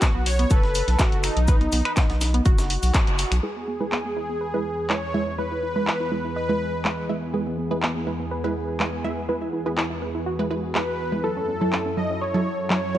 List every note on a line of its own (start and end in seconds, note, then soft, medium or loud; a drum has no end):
0.00 0.10 B3 medium
0.00 0.28 F#4 loud
0.00 kick loud
0.00 snare loud
0.00 clap loud
0.00 closed hi-hat medium
0.00 shaker medium
0.15 0.45 B1 medium
0.15 0.22 B3 medium
0.26 0.51 C#5 medium
0.26 open hi-hat medium
0.26 open hi-hat loud
0.39 0.46 B3 medium
0.39 closed hi-hat medium
0.50 0.82 F#1 medium
0.50 1.39 A4 medium
0.50 1.01 B4 loud
0.50 kick loud
0.50 closed hi-hat medium
0.50 shaker medium
0.63 snare soft
0.75 open hi-hat loud
0.75 shaker medium
0.88 0.96 B1 medium
0.88 snare soft
0.88 closed hi-hat medium
0.99 1.25 F#4 medium
0.99 kick loud
0.99 snare loud
0.99 clap loud
0.99 closed hi-hat medium
0.99 shaker medium
1.12 1.29 F#1 loud
1.12 closed hi-hat soft
1.24 2.91 D#4 medium
1.24 finger snap medium
1.24 open hi-hat loud
1.24 shaker medium
1.37 1.67 B1 loud
1.37 closed hi-hat medium
1.48 1.56 B4 medium
1.48 kick loud
1.48 closed hi-hat medium
1.48 shaker medium
1.61 1.68 B3 medium
1.61 closed hi-hat soft
1.72 1.82 B1 loud
1.72 1.80 B3 medium
1.72 open hi-hat medium
1.72 shaker medium
1.85 1.92 B4 medium
1.85 finger snap medium
1.85 closed hi-hat soft
1.97 2.05 B3 medium
1.97 kick loud
1.97 snare loud
1.97 clap loud
1.97 closed hi-hat medium
1.97 shaker medium
2.10 2.40 B1 medium
2.10 2.17 B3 medium
2.10 snare medium
2.10 closed hi-hat soft
2.21 snare loud
2.21 open hi-hat loud
2.21 shaker medium
2.34 2.41 B3 medium
2.34 closed hi-hat medium
2.45 2.77 F#1 medium
2.45 3.34 F#4 medium
2.45 kick loud
2.45 closed hi-hat medium
2.45 shaker medium
2.58 snare medium
2.58 shaker medium
2.70 open hi-hat loud
2.83 2.91 B1 medium
2.83 open hi-hat medium
2.83 shaker medium
2.94 kick loud
2.94 snare loud
2.94 clap loud
2.94 closed hi-hat medium
2.94 shaker medium
3.07 3.25 F#1 loud
3.07 closed hi-hat soft
3.19 open hi-hat loud
3.19 shaker medium
3.32 3.40 B1 loud
3.32 finger snap medium
3.32 closed hi-hat medium
3.32 closed hi-hat soft
3.43 11.20 E2 medium
3.43 11.20 E3 medium
3.43 3.77 G#3 medium
3.43 11.20 B3 medium
3.43 3.77 E4 medium
3.43 4.94 G#4 medium
3.43 3.51 G#4 medium
3.43 11.20 G#4 medium
3.43 3.77 B4 medium
3.56 3.63 B3 medium
3.68 3.76 B3 medium
3.80 4.14 G#3 medium
3.80 4.14 E4 medium
3.80 3.88 G#4 medium
3.80 4.14 B4 medium
3.92 4.00 B3 medium
3.92 clap loud
4.05 4.12 B3 medium
4.16 4.38 G#3 medium
4.16 4.38 E4 medium
4.16 4.38 B4 medium
4.29 4.36 B3 medium
4.41 5.29 B4 medium
4.54 4.75 G#3 medium
4.54 4.75 E4 medium
4.54 4.75 B4 loud
4.89 5.11 G#3 medium
4.89 5.11 E4 medium
4.89 5.11 B4 medium
4.89 5.35 C#5 loud
4.89 clap loud
5.14 5.36 G#3 medium
5.14 5.36 E4 medium
5.14 5.36 E5 loud
5.38 5.73 G#3 medium
5.38 5.73 E4 medium
5.38 6.35 B4 loud
5.38 5.46 B4 loud
5.38 5.73 B4 medium
5.51 5.58 E4 medium
5.63 5.71 E4 medium
5.76 6.09 G#3 medium
5.76 6.09 E4 medium
5.76 5.83 B4 medium
5.76 6.09 B4 loud
5.87 5.95 E4 medium
5.87 clap loud
6.00 6.07 E4 medium
6.12 6.34 G#3 medium
6.12 6.34 E4 medium
6.12 6.34 B4 medium
6.25 6.32 E4 medium
6.36 7.05 B4 medium
6.36 7.24 D#5 medium
6.49 6.71 G#3 medium
6.49 6.71 E4 medium
6.49 6.71 B4 loud
6.85 7.06 G#3 medium
6.85 7.06 E4 medium
6.85 7.06 B4 medium
6.85 clap loud
7.09 7.31 G#3 medium
7.09 7.31 E4 medium
7.09 7.31 E5 medium
7.34 7.68 G#3 medium
7.34 7.68 E4 medium
7.34 7.41 G#4 medium
7.34 7.68 B4 medium
7.46 7.53 B3 medium
7.58 7.66 B3 medium
7.71 8.04 G#3 medium
7.71 8.04 E4 medium
7.71 7.78 G#4 medium
7.71 8.04 B4 loud
7.82 7.90 B3 medium
7.82 clap loud
7.95 8.02 B3 medium
8.07 8.29 G#3 medium
8.07 8.29 E4 medium
8.07 8.29 B4 medium
8.20 8.27 B3 medium
8.31 9.20 B4 medium
8.44 8.66 G#3 loud
8.44 8.66 E4 medium
8.44 8.66 B4 loud
8.80 9.02 G#3 medium
8.80 9.02 E4 medium
8.80 9.02 B4 medium
8.80 clap loud
9.04 9.26 G#3 medium
9.04 9.26 E4 medium
9.04 9.26 E5 loud
9.29 9.63 G#3 medium
9.29 9.63 E4 medium
9.29 9.37 B4 medium
9.29 9.63 B4 medium
9.42 9.49 E4 medium
9.53 9.61 E4 medium
9.66 9.99 G#3 medium
9.66 9.99 E4 medium
9.66 9.73 G#4 medium
9.66 9.99 B4 medium
9.78 9.85 E4 medium
9.78 clap loud
9.90 9.97 E4 medium
10.02 10.24 G#3 medium
10.02 10.24 E4 medium
10.02 10.24 B4 medium
10.15 10.22 E4 medium
10.26 11.15 F#4 medium
10.39 10.48 G#3 loud
10.39 10.48 E4 medium
10.39 10.48 B4 loud
10.51 10.65 G#3 medium
10.51 10.65 E4 medium
10.51 10.65 B4 loud
10.75 10.89 G#3 medium
10.75 10.89 E4 medium
10.75 10.89 B4 loud
10.75 11.25 B4 loud
10.75 clap loud
11.12 11.21 G#3 medium
11.12 11.21 E4 medium
11.12 11.21 B4 medium
11.24 12.98 F#2 medium
11.24 12.98 F#3 medium
11.24 11.58 F#3 medium
11.24 12.98 E4 medium
11.24 11.58 E4 medium
11.24 11.32 A4 medium
11.24 12.98 A4 medium
11.24 11.99 A4 loud
11.24 11.58 A4 medium
11.37 11.44 C#4 medium
11.48 11.56 C#4 medium
11.61 11.94 F#3 medium
11.61 11.94 E4 medium
11.61 11.68 A4 medium
11.61 11.94 A4 medium
11.73 11.80 C#4 medium
11.73 clap loud
11.86 11.93 C#4 medium
11.97 12.19 F#3 medium
11.97 12.19 E4 medium
11.97 12.19 A4 medium
11.97 12.22 D#5 medium
12.10 12.17 C#4 medium
12.21 12.98 C#5 medium
12.21 12.69 C#5 loud
12.34 12.56 F#3 medium
12.34 12.56 E4 medium
12.34 12.56 A4 loud
12.70 12.92 F#3 medium
12.70 12.92 E4 medium
12.70 12.92 A4 medium
12.70 12.98 C#5 loud
12.70 clap loud
12.95 12.98 F#3 medium
12.95 12.98 E4 medium
12.95 12.98 C#5 loud